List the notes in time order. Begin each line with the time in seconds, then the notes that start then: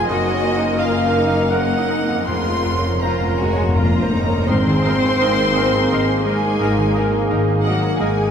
Already playing: F2 F#2 C3 A#3 F4 G#4 C5 F5 G#5
0.01 D#4
0.06 F#1 A#3 A#4 D#5
0.10 F#2 A#3 F#4 A#4
0.33 F#3
0.57 D#4
0.79 F4 A#4 F5
1.05 D#4
1.18 D#4
1.28 D#5
1.51 A#3 C#4 A#4 D#5 F#5
1.78 D#4
1.89 C4 D#4
2.02 A#3
2.08 F2
2.13 A#3
2.18 C#4
2.22 C5 C6
2.26 F1 F2 C#3 F4 A#4 C5 C6
2.36 F2
2.44 F2
2.51 F2 C4
2.58 F2
2.65 F2
2.73 F2
2.78 F2 C#4
2.89 F2
2.96 F2 A#5
3.01 F2 C#4 F4 A#4 C5 A#5
3.12 F2
3.20 F2
3.28 F2 A#4
3.37 F2 G#3 F#4 G#4 G#5
3.44 F2
3.53 F2 C#5
3.61 F2
3.68 F2
3.75 F2 A#3 F4 A#4 A#5
3.84 F2
3.91 F2
4.00 F2 C5
4.08 F2 D#4
4.16 F2
4.24 F2 C#4
4.31 F2
4.40 F2
4.46 G#1 G#2 A#3 C4 D#4 G#4 A#4 C5 C6 D#6
4.66 D#3 G#4
4.81 G#3 A#4 D#6
4.85 A#3 D#4 A#4
5.02 D#4 G#4
5.18 G#1 D#4 A#4 D#6
5.24 A#3 D#4
5.37 G#4
5.53 A#4 D#5 D#6
5.58 A#3 D#4 A#4
5.74 G#4 A#5
5.90 G#1 A#3 D#4 A#4 D#5 D#6
6.08 G#4
6.24 G#3 A#3 D#4 G#4 A#4 G#5 D#6
6.29 D#4
6.42 G#3 G#4
6.58 G#1 G#2 A#3 A#4 D#6
6.62 D#4
6.77 D#3 D#4
6.93 G#3 A#3 D#4 A#4 D#6
7.12 D#4 G#4
7.28 G#1 A#3 D#4 A#4 D#6
7.48 G#4
7.64 F#3 A#3 D#4 F#4 A#4 D#5 F#5 D#6
7.83 G#4 A#5
8.00 G#1 G#3 A#3 D#4 G#4 A#4 D#5 G#5 D#6
8.17 G#4